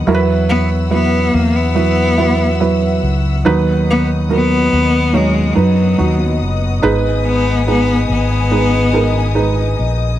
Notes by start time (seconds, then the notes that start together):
Already playing: B3 F#5
0.07 E2 F#3 E4 A#4 E5 E6
0.14 B4
0.50 B3
0.91 F#3 B3 E4 B4
1.34 E2 A#3
1.56 B3
1.75 F#3 E4 B4
2.17 F#3 E4 B4
2.60 F#3 E4 B4
3.03 C#2
3.45 D#2 D#3 F#3 B3 D#4 B4 D#5 D#6
3.91 B3
4.29 F#3 B3 D#4 A#4
4.73 D#2
5.13 F#3 G#3 D#4 C#5
5.52 F#3 G#3 D#4
5.56 F#2 F#3 B4
5.97 D#2 F#3 D#4 F#4
6.41 F#1
6.82 G#1 G#2 G#3 D#4 B4 G#5
7.27 B3
7.67 G#3 B3 D#4 B4
8.10 G#1 B3
8.51 G#3 D#4 B4
8.93 G#3 D#4 A#4
9.35 G#3 D#4 B4
9.79 A#1